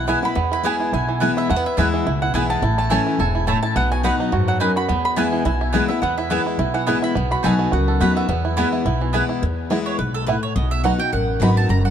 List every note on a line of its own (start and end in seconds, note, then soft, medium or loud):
0.00 0.14 B1 medium
0.00 0.33 B2 medium
0.00 0.20 E3 medium
0.00 0.19 E5 medium
0.07 0.22 E3 medium
0.07 0.23 G#3 medium
0.07 0.18 B3 medium
0.07 0.23 B3 medium
0.07 0.36 E4 medium
0.07 0.18 E4 medium
0.07 0.21 E4 medium
0.07 0.18 B4 medium
0.07 0.18 G#5 loud
0.07 0.25 G#5 medium
0.22 0.35 B3 medium
0.22 0.37 B3 soft
0.22 0.35 E4 medium
0.22 0.52 B5 loud
0.35 0.90 E2 medium
0.35 0.71 E2 medium
0.35 0.63 B3 medium
0.52 0.80 E4 medium
0.52 0.64 B5 loud
0.63 0.91 E3 medium
0.63 0.91 G#3 medium
0.63 0.75 B3 medium
0.63 1.05 B3 medium
0.63 0.92 B3 medium
0.63 0.75 E4 loud
0.63 0.92 E4 medium
0.63 0.75 B4 medium
0.63 0.75 G#5 loud
0.63 0.92 G#5 loud
0.80 0.93 E4 medium
0.92 1.27 B1 medium
0.92 1.47 B2 medium
0.92 1.21 E4 medium
0.92 1.34 G#5 medium
1.09 1.93 E3 medium
1.20 1.48 E3 medium
1.20 1.49 G#3 medium
1.20 1.31 B3 medium
1.20 1.49 B3 medium
1.20 1.31 E4 medium
1.20 1.37 E4 medium
1.20 1.49 E4 medium
1.20 1.31 B4 medium
1.20 1.31 G#5 loud
1.37 1.78 E4 medium
1.37 1.49 E5 loud
1.49 1.67 E2 medium
1.49 2.04 E2 medium
1.49 1.56 A3 medium
1.49 1.66 F#5 loud
1.56 1.78 B3 medium
1.66 1.77 E5 medium
1.77 2.02 D#2 medium
1.77 2.05 E3 medium
1.77 2.05 G#3 medium
1.77 1.87 B3 medium
1.77 2.06 B3 loud
1.77 1.88 E4 loud
1.77 2.05 E4 medium
1.77 2.06 E4 loud
1.77 1.88 B4 medium
1.77 2.19 E5 medium
1.77 1.88 G#5 medium
1.94 2.32 E3 medium
2.06 2.30 C#2 medium
2.06 2.60 B2 medium
2.06 2.21 E4 medium
2.22 2.33 E4 medium
2.22 2.34 F#5 medium
2.34 2.58 B1 medium
2.34 2.61 E3 medium
2.34 2.62 G#3 medium
2.34 2.44 B3 medium
2.34 2.62 B3 medium
2.34 2.44 E4 medium
2.34 2.61 E4 medium
2.34 2.62 E4 loud
2.34 2.44 B4 loud
2.34 2.49 G#5 medium
2.34 2.45 G#5 medium
2.50 2.63 B3 medium
2.50 2.76 A5 loud
2.62 2.97 A1 medium
2.62 3.17 A2 medium
2.62 3.03 E4 medium
2.78 3.17 A3 medium
2.78 2.90 A5 medium
2.90 3.18 E3 medium
2.90 3.00 A3 medium
2.90 3.18 A3 medium
2.90 3.18 C#4 loud
2.90 3.01 E4 medium
2.90 3.19 E4 loud
2.90 3.19 A4 medium
2.90 3.01 C#5 medium
2.90 3.19 G#5 loud
2.90 3.01 A5 medium
3.07 3.34 E4 medium
3.19 3.53 E1 medium
3.19 3.46 G#2 medium
3.19 3.46 A4 medium
3.19 3.62 G#5 medium
3.35 3.62 E4 medium
3.47 3.74 A2 medium
3.47 3.57 A3 medium
3.47 3.58 E4 medium
3.47 3.76 A4 medium
3.47 3.58 C#5 loud
3.47 3.58 A5 loud
3.63 3.76 E4 medium
3.63 3.75 A5 loud
3.76 4.10 B1 medium
3.76 4.30 B2 medium
3.76 4.04 B3 medium
3.76 3.91 F#5 loud
3.92 4.30 F#4 medium
3.92 4.03 G#5 loud
4.03 4.31 F#3 medium
4.03 4.31 B3 medium
4.03 4.88 B3 medium
4.03 4.14 D#4 medium
4.03 4.32 D#4 loud
4.03 4.32 F#4 medium
4.03 4.14 B4 medium
4.03 4.47 F#5 medium
4.03 4.14 F#5 loud
4.03 4.14 B5 loud
4.20 4.58 D#4 medium
4.32 4.67 F#2 medium
4.32 4.59 G#2 medium
4.32 4.73 F#4 medium
4.48 4.86 F#3 medium
4.48 4.60 F#5 loud
4.60 4.88 F#2 medium
4.60 4.70 D#4 medium
4.60 4.89 D#4 medium
4.60 4.71 B4 loud
4.60 4.71 F#5 medium
4.60 4.76 G#5 medium
4.60 4.71 B5 medium
4.76 4.89 F#4 medium
4.76 5.04 B5 loud
4.89 5.24 E2 loud
4.89 5.43 E2 medium
4.89 5.89 B3 medium
5.05 5.17 B5 loud
5.16 5.44 E3 medium
5.16 5.44 G#3 medium
5.16 5.27 B3 medium
5.16 5.45 B3 medium
5.16 5.44 E4 medium
5.16 5.27 E4 medium
5.16 5.45 E4 loud
5.16 5.27 B4 loud
5.16 5.44 G#5 medium
5.16 5.28 G#5 loud
5.32 5.71 E3 medium
5.45 5.80 B1 medium
5.45 6.00 B2 medium
5.45 5.60 E4 medium
5.45 5.88 G#5 medium
5.61 5.73 E4 medium
5.73 5.89 E3 medium
5.73 5.89 G#3 loud
5.73 5.83 B3 loud
5.73 5.90 B3 medium
5.73 5.83 E4 medium
5.73 6.15 E4 medium
5.73 5.88 E4 medium
5.73 5.84 B4 medium
5.73 5.84 G#5 loud
5.89 6.02 B3 medium
5.89 6.03 B3 medium
5.89 6.02 E4 medium
5.89 6.01 E5 medium
6.02 6.37 E2 medium
6.02 6.57 E2 loud
6.02 6.30 B3 medium
6.02 6.16 F#5 medium
6.18 6.45 E4 medium
6.18 6.30 E5 medium
6.30 6.57 E3 medium
6.30 6.58 G#3 loud
6.30 6.40 B3 medium
6.30 7.15 B3 medium
6.30 6.58 B3 medium
6.30 6.41 E4 medium
6.30 6.58 E4 loud
6.30 6.41 B4 medium
6.30 6.76 E5 medium
6.30 6.41 G#5 loud
6.46 6.58 E4 medium
6.58 6.93 B1 medium
6.58 7.13 B2 medium
6.58 6.86 E4 medium
6.74 7.13 E3 medium
6.74 6.88 F#5 medium
6.87 7.14 E3 medium
6.87 7.15 G#3 loud
6.87 6.97 B3 medium
6.87 7.15 B3 medium
6.87 6.97 E4 medium
6.87 7.01 E4 medium
6.87 7.16 E4 medium
6.87 6.97 B4 medium
6.87 6.97 G#5 loud
6.87 7.03 G#5 medium
7.02 7.16 E4 medium
7.02 7.30 B5 loud
7.15 7.33 B1 loud
7.15 7.70 B2 medium
7.15 7.59 B3 medium
7.31 7.70 F#4 medium
7.31 7.45 B5 loud
7.43 7.68 B1 medium
7.43 7.71 F#3 medium
7.43 7.71 B3 loud
7.43 7.53 D#4 medium
7.43 7.72 D#4 medium
7.43 7.72 F#4 loud
7.43 7.85 A4 medium
7.43 7.54 B4 medium
7.43 7.54 F#5 medium
7.43 7.71 G#5 medium
7.43 7.54 B5 loud
7.59 8.16 B3 medium
7.72 7.97 C#2 medium
7.72 8.27 F#2 medium
7.72 8.00 F#4 medium
7.72 8.18 F#5 medium
7.88 8.27 A4 medium
8.00 8.25 D#2 medium
8.00 8.28 F#3 medium
8.00 8.28 B3 medium
8.00 8.11 D#4 medium
8.00 8.29 D#4 loud
8.00 8.29 F#4 medium
8.00 8.11 B4 medium
8.00 8.11 F#5 loud
8.00 8.11 B5 medium
8.16 8.29 B3 medium
8.16 9.11 E5 medium
8.28 8.63 E2 medium
8.28 8.83 E2 loud
8.28 8.56 B3 medium
8.45 8.71 E4 medium
8.57 8.84 E3 medium
8.57 8.85 G#3 medium
8.57 8.67 B3 medium
8.57 8.98 B3 medium
8.57 8.85 B3 loud
8.57 8.67 E4 loud
8.57 8.85 E4 loud
8.57 8.67 B4 medium
8.57 8.67 G#5 loud
8.73 8.84 E4 medium
8.85 9.20 B1 medium
8.85 9.40 B2 medium
8.85 9.13 E4 medium
9.01 9.40 E3 medium
9.13 9.41 E3 medium
9.13 9.41 G#3 medium
9.13 9.23 B3 medium
9.13 9.42 B3 medium
9.13 9.24 E4 medium
9.13 9.28 E4 medium
9.13 9.42 E4 loud
9.13 9.24 B4 medium
9.13 9.24 G#5 medium
9.29 9.42 E4 medium
9.42 9.77 E2 medium
9.42 9.97 E2 medium
9.70 9.98 E3 medium
9.70 9.98 G#3 medium
9.70 9.78 B3 medium
9.70 9.98 B3 medium
9.70 9.78 E4 medium
9.70 9.99 E4 medium
9.86 9.98 C#5 medium
9.99 10.34 B1 medium
9.99 10.26 G#2 medium
9.99 10.14 B4 medium
10.14 10.27 A4 medium
10.26 10.54 A2 medium
10.26 10.35 B3 medium
10.26 10.35 E4 medium
10.26 10.42 B4 medium
10.43 10.55 C#5 medium
10.56 10.90 B1 loud
10.56 11.10 B2 medium
10.56 10.71 D#5 medium
10.71 10.84 E5 loud
10.84 10.99 F#3 medium
10.84 10.99 B3 loud
10.84 10.92 B3 medium
10.84 10.92 D#4 medium
10.84 10.99 D#4 medium
10.84 10.92 F#4 medium
10.84 10.97 F#4 medium
10.84 10.99 F#5 medium
10.98 11.13 D#4 medium
10.98 11.12 F#4 medium
10.98 11.12 G5 loud
11.12 11.37 A1 medium
11.12 11.67 F#2 medium
11.12 11.39 F#5 medium
11.40 11.65 G#1 medium
11.40 11.68 F#3 medium
11.40 11.68 B3 medium
11.40 11.49 B3 medium
11.40 11.69 D#4 medium
11.40 11.49 D#4 medium
11.40 11.69 F#4 medium
11.40 11.49 F#4 medium
11.40 11.57 B5 loud
11.57 11.69 A5 loud
11.69 11.90 F#1 medium
11.69 11.90 F#2 medium
11.69 11.85 A#5 medium
11.85 11.90 F#5 medium